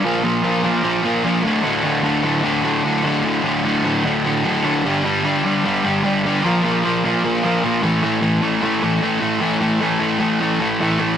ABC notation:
X:1
M:4/4
L:1/8
Q:1/4=150
K:Ador
V:1 name="Overdriven electric guitar" clef=bass
[_B,,=F,_B,] [B,,F,B,] [B,,F,B,] [B,,F,B,] [B,,F,B,] [B,,F,B,] [B,,F,B,] [D,,A,,D,] | [D,,A,,D,] [D,,A,,D,] [D,,A,,D,] [D,,A,,D,] [D,,A,,D,] [D,,A,,D,] [D,,A,,D,] [D,,A,,D,] | [D,,A,,D,] [D,,A,,D,] [D,,A,,D,] [D,,A,,D,] [D,,A,,D,] [D,,A,,D,] [D,,A,,D,] [D,,A,,D,] | [G,,D,G,] [G,,D,G,] [G,,D,G,] [G,,D,G,] [G,,D,G,] [G,,D,G,] [G,,D,G,] [G,,D,G,] |
[_B,,=F,_B,] [B,,F,B,] [B,,F,B,] [B,,F,B,] [B,,F,B,] [B,,F,B,] [B,,F,B,] [A,,E,A,] | [A,,E,A,] [A,,E,A,] [A,,E,A,] [A,,E,A,] [A,,E,A,] [A,,E,A,] [A,,E,A,] [A,,E,A,] | [A,,E,A,] [A,,E,A,] [A,,E,A,] [A,,E,A,] [A,,E,A,] [A,,E,A,] [A,,E,A,] [A,,E,A,] |]